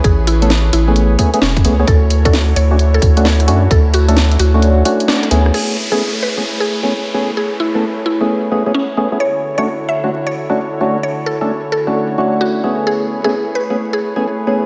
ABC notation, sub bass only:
X:1
M:4/4
L:1/8
Q:"Swing 16ths" 1/4=131
K:A
V:1 name="Sub bass" clef=bass
A,,,3 A,,,2 z E,,, C,, | D,,3 D,,2 D,,2 F,, | D,,3 D,,2 z2 D,, | z8 |
z8 | z8 | z8 | z8 |]